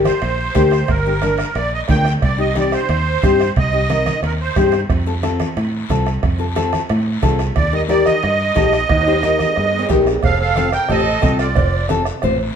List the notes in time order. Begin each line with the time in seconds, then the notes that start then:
Already playing: A#3 D4 G4
0.05 C5, bombo rim, high conga, high timbale, short guiro
0.22 A#1, bombo rim, high timbale, long guiro
0.54 D2 A#3 D4 G4, bombo low, bombo rim, high conga, high timbale, short guiro
0.71 bombo rim, high timbale, short guiro
0.88 G1 A#4, bombo low, bombo rim, high timbale, long guiro
1.05 A#3 D4 G4
1.22 A#3 D4 A#4, bombo rim, high conga, high timbale, short guiro
1.38 bombo rim, high timbale, short guiro
1.55 A#1 D5, bombo rim, high timbale, long guiro
1.74 D#5
1.88 D2 A#3 D4 F4 G5, bombo low, bombo rim, high conga, high timbale, low timbale, short guiro
2.05 bombo rim, high timbale, short guiro
2.22 C2 D5, bombo low, bombo rim, high timbale, long guiro
2.37 C4 D#4 G4 D#5
2.55 C4 D#4 G4 D5, bombo rim, high conga, high timbale, short guiro
2.72 C5, bombo rim, high timbale, short guiro
2.89 D#2, bombo rim, high timbale, long guiro
3.22 G2 C4 D#4 G4, bombo low, bombo rim, high conga, high timbale, short guiro
3.40 bombo rim, high timbale, short guiro
3.56 C2 D#5, bombo low, bombo rim, high timbale, long guiro
3.72 C4 D#4 G4
3.89 C4 D#4 A#4, bombo rim, high conga, high timbale, short guiro
4.06 bombo rim, high conga, high timbale, short guiro
4.22 D#2 A#4, bombo rim, high timbale, long guiro
4.42 C5
4.56 G2 C4 D#4 G4 C5, bombo low, bombo rim, high conga, high timbale, low timbale, short guiro
4.72 bombo rim, high timbale, short guiro
4.89 F2, bombo low, bombo rim, high timbale, long guiro
5.06 C4 F4 A4
5.23 C4 F4 A4, bombo rim, high conga, high timbale, short guiro
5.40 bombo rim, high conga, high timbale, short guiro
5.57 A2, bombo rim, high timbale, long guiro
5.89 C2 C4 F4 A4, bombo low, bombo rim, high conga, high timbale, short guiro
6.06 bombo rim, high timbale, short guiro
6.23 F2, bombo low, bombo rim, high timbale, long guiro
6.38 C4 F4 A4
6.56 C4 F4 A4, bombo rim, high conga, high timbale, short guiro
6.73 bombo rim, high conga, high timbale, short guiro
6.89 A2, bombo rim, high timbale, long guiro
7.22 C2 C4 F4 A4, bombo low, bombo rim, high conga, high timbale, low timbale, short guiro
7.39 bombo rim, high timbale, short guiro
7.56 D#2 D5, bombo low, bombo rim, high timbale, long guiro
7.72 D#4 G4 A#4 D#5
7.88 D#4 G4 A#4 D5, bombo rim, high conga, high timbale, short guiro
8.06 D#5, bombo rim, high conga, high timbale, short guiro
8.23 G2, bombo rim, high timbale, long guiro
8.55 A#1 D#4 G4 A4, bombo low, bombo rim, high conga, high timbale, low timbale, short guiro
8.73 bombo rim, high timbale, short guiro
8.89 D#2, bombo low, bombo rim, high timbale, long guiro
9.01 high timbale
9.06 D#4 G4 C5
9.12 high timbale
9.23 D#4 G4 A#4, bombo rim, high conga, short guiro
9.39 bombo rim, high conga, short guiro
9.46 low timbale
9.56 G2, bombo rim, low timbale, long guiro
9.79 low timbale
9.89 A#1 D#4 G4 A#4, bombo low, bombo rim, high conga, low timbale, short guiro
10.02 low timbale
10.06 bombo rim, short guiro
10.13 low timbale
10.23 F1 A4 F5, bombo low, bombo rim, cowbell, long guiro
10.41 A4 F5
10.56 C4 F4 A4, bombo rim, cowbell, high conga, short guiro
10.72 A#4 G5, bombo rim, short guiro
10.89 A1 C4 F4 G4 A4 D#5, bombo rim, cowbell, low conga, long guiro
11.22 C2 C4 F4 A4, bombo low, bombo rim, cowbell, high conga, short guiro
11.39 F4 D5, bombo rim, short guiro
11.56 F1, bombo low, bombo rim, cowbell, low conga, long guiro
11.89 C4 F4 A4, bombo rim, cowbell, high conga, short guiro
12.05 bombo rim, short guiro
12.22 A1 C4 F4 C5, bombo rim, cowbell, low conga, long guiro